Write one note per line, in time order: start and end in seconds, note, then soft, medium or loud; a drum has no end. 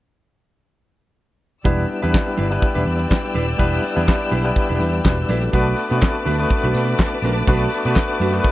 1.64 1.84 E1 medium
1.64 1.87 G3 medium
1.64 1.94 G3 medium
1.64 1.94 B3 medium
1.64 1.88 D4 medium
1.64 1.94 D4 medium
1.64 1.88 E4 medium
1.64 1.94 E4 medium
1.64 1.88 B4 medium
1.64 1.95 B4 medium
1.64 5.49 D5 medium
1.64 5.49 G5 medium
1.64 5.49 E6 medium
1.64 kick medium
1.64 closed hi-hat medium
1.89 muted clean electric guitar stroke soft
2.02 2.11 E2 medium
2.02 2.39 G3 medium
2.02 2.12 G3 medium
2.02 2.39 B3 medium
2.02 2.40 D4 medium
2.02 2.12 D4 medium
2.02 2.12 E4 medium
2.02 2.40 E4 medium
2.02 2.12 B4 medium
2.02 2.40 B4 medium
2.02 closed hi-hat soft
2.13 muted clean electric guitar stroke soft
2.13 kick loud
2.13 snare medium
2.13 clap medium
2.13 closed hi-hat soft
2.26 muted clean electric guitar stroke medium
2.37 2.57 G1 medium
2.37 2.58 G3 medium
2.37 2.50 D4 medium
2.37 2.49 E4 medium
2.37 2.49 B4 medium
2.50 3.27 G3 medium
2.50 3.27 B3 medium
2.50 3.27 D4 medium
2.50 3.27 E4 medium
2.50 3.28 B4 medium
2.50 muted clean electric guitar stroke soft
2.50 closed hi-hat soft
2.62 muted clean electric guitar stroke soft
2.62 kick loud
2.62 closed hi-hat medium
2.75 2.84 E1 medium
2.75 2.85 G3 medium
2.75 2.85 D4 medium
2.75 2.86 E4 medium
2.75 2.86 B4 medium
2.86 3.05 E2 medium
2.86 muted clean electric guitar stroke soft
2.99 muted clean electric guitar stroke soft
2.99 closed hi-hat soft
3.10 muted clean electric guitar stroke soft
3.10 kick loud
3.10 snare loud
3.10 clap medium
3.10 closed hi-hat medium
3.24 muted clean electric guitar stroke soft
3.34 3.54 D#1 medium
3.34 3.55 G3 medium
3.34 3.48 D4 medium
3.34 3.47 E4 medium
3.34 3.47 B4 medium
3.34 snare soft
3.48 muted clean electric guitar stroke soft
3.48 closed hi-hat soft
3.58 3.78 E1 medium
3.58 3.88 G3 medium
3.58 3.81 G3 medium
3.58 3.88 B3 medium
3.58 3.88 D4 medium
3.58 3.82 D4 medium
3.58 3.88 E4 medium
3.58 3.82 E4 medium
3.58 3.88 B4 medium
3.58 3.82 B4 medium
3.58 kick medium
3.58 closed hi-hat medium
3.83 muted clean electric guitar stroke soft
3.83 open hi-hat medium
3.95 4.05 E2 loud
3.95 4.33 G3 medium
3.95 4.06 G3 soft
3.95 4.33 B3 medium
3.95 4.34 D4 medium
3.95 4.06 D4 soft
3.95 4.34 E4 medium
3.95 4.07 E4 soft
3.95 4.07 B4 medium
3.95 4.34 B4 medium
3.95 closed hi-hat soft
4.07 muted clean electric guitar stroke soft
4.07 kick loud
4.07 snare medium
4.07 clap medium
4.07 closed hi-hat medium
4.21 muted clean electric guitar stroke soft
4.31 4.50 B1 medium
4.31 4.52 G3 medium
4.31 4.45 D4 medium
4.31 4.44 E4 medium
4.31 4.44 B4 medium
4.31 open hi-hat medium
4.44 5.21 G3 medium
4.44 5.21 B3 medium
4.44 5.21 D4 medium
4.44 5.21 E4 medium
4.44 5.03 B4 medium
4.44 muted clean electric guitar stroke soft
4.44 closed hi-hat soft
4.55 muted clean electric guitar stroke soft
4.55 kick medium
4.55 closed hi-hat medium
4.69 4.78 E1 medium
4.69 4.78 G3 medium
4.69 4.79 D4 medium
4.69 4.80 E4 medium
4.69 4.80 B4 medium
4.80 4.99 E2 medium
4.80 4.98 G3 medium
4.80 4.92 D4 medium
4.80 4.92 E4 medium
4.80 4.92 B4 medium
4.80 open hi-hat medium
4.93 muted clean electric guitar stroke soft
4.93 closed hi-hat soft
5.04 5.23 E1 medium
5.04 5.28 F#4 medium
5.04 5.28 B4 medium
5.04 muted clean electric guitar stroke soft
5.04 kick loud
5.04 snare loud
5.04 clap medium
5.04 closed hi-hat medium
5.18 muted clean electric guitar stroke soft
5.29 5.48 A#1 medium
5.29 5.49 G3 medium
5.29 5.41 D4 medium
5.29 5.41 E4 medium
5.29 5.76 A4 medium
5.29 5.40 B4 medium
5.29 5.75 D5 medium
5.29 snare soft
5.29 open hi-hat medium
5.42 muted clean electric guitar stroke soft
5.42 closed hi-hat soft
5.52 5.72 B1 loud
5.52 5.76 A3 medium
5.52 5.83 A3 medium
5.52 5.83 B3 medium
5.52 5.76 D4 medium
5.52 5.83 D4 medium
5.52 5.76 F#4 medium
5.52 5.83 F#4 medium
5.52 8.52 B4 medium
5.52 5.76 B4 medium
5.52 5.83 B4 loud
5.52 8.52 A5 medium
5.52 8.52 D6 medium
5.52 kick medium
5.52 closed hi-hat medium
5.77 open hi-hat medium
5.90 5.99 B2 medium
5.90 6.28 A3 medium
5.90 6.00 A3 medium
5.90 6.28 B3 medium
5.90 5.96 C4 medium
5.90 6.01 D4 medium
5.90 6.01 F#4 medium
5.90 6.28 F#4 medium
5.90 6.01 B4 medium
5.90 6.29 B4 medium
5.90 closed hi-hat soft
5.97 6.31 D4 medium
6.02 kick loud
6.02 snare medium
6.02 clap medium
6.02 closed hi-hat medium
6.15 muted clean electric guitar stroke soft
6.25 6.45 D2 medium
6.25 6.46 A3 medium
6.25 6.39 D4 medium
6.25 6.39 F#4 medium
6.25 6.38 B4 medium
6.25 open hi-hat medium
6.39 7.15 A3 medium
6.39 7.15 B3 medium
6.39 7.15 D4 medium
6.39 7.16 F#4 medium
6.39 7.16 B4 medium
6.39 muted clean electric guitar stroke soft
6.39 closed hi-hat soft
6.50 muted clean electric guitar stroke medium
6.50 kick medium
6.50 closed hi-hat medium
6.64 6.72 B1 medium
6.64 6.74 A3 medium
6.64 6.74 D4 medium
6.64 6.75 F#4 medium
6.64 6.75 B4 medium
6.74 6.93 B2 loud
6.74 6.93 A3 medium
6.74 6.89 D4 medium
6.74 6.89 F#4 medium
6.74 6.88 B4 medium
6.74 open hi-hat medium
6.88 muted clean electric guitar stroke soft
6.88 closed hi-hat soft
6.98 kick medium
6.98 snare loud
6.98 clap loud
6.98 closed hi-hat soft
7.14 muted clean electric guitar stroke soft
7.22 7.41 A#1 medium
7.22 7.45 A3 medium
7.22 7.38 D4 medium
7.22 7.38 F#4 medium
7.22 7.37 B4 medium
7.22 open hi-hat medium
7.36 muted clean electric guitar stroke soft
7.36 closed hi-hat soft
7.47 7.66 B1 loud
7.47 7.77 A3 medium
7.47 7.71 A3 medium
7.47 7.77 B3 medium
7.47 7.77 D4 medium
7.47 7.71 D4 medium
7.47 7.77 F#4 medium
7.47 7.71 F#4 loud
7.47 7.77 B4 loud
7.47 7.71 B4 medium
7.47 kick loud
7.47 closed hi-hat medium
7.70 open hi-hat medium
7.85 7.94 B2 medium
7.85 8.22 A3 medium
7.85 7.96 A3 soft
7.85 8.22 B3 medium
7.85 8.22 D4 medium
7.85 7.96 D4 medium
7.85 8.23 F#4 medium
7.85 7.96 F#4 soft
7.85 8.23 B4 medium
7.85 7.96 B4 medium
7.85 closed hi-hat soft
7.95 muted clean electric guitar stroke soft
7.95 kick loud
7.95 snare loud
7.95 clap medium
7.95 closed hi-hat medium
8.11 muted clean electric guitar stroke soft
8.20 8.39 F#2 medium
8.20 8.41 A3 medium
8.20 8.35 D4 medium
8.20 8.34 F#4 medium
8.20 8.34 B4 medium
8.20 open hi-hat medium
8.33 8.52 A3 medium
8.33 8.52 B3 medium
8.33 8.52 D4 medium
8.33 8.52 F#4 medium
8.33 8.39 A#4 medium
8.33 muted clean electric guitar stroke soft
8.33 closed hi-hat soft
8.40 8.52 B4 medium
8.40 closed hi-hat medium
8.44 muted clean electric guitar stroke soft
8.44 kick loud